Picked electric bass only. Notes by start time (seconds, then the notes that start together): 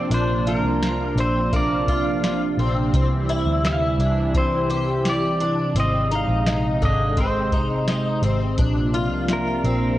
0.11 A#1
0.63 C2
1.16 A#1
2.57 A#1
2.94 C2
3.46 D2
3.98 C2
5.75 G#1
6.28 A#1
6.81 G#1
8.22 G#1
8.58 A#1
9.11 C2
9.64 A#1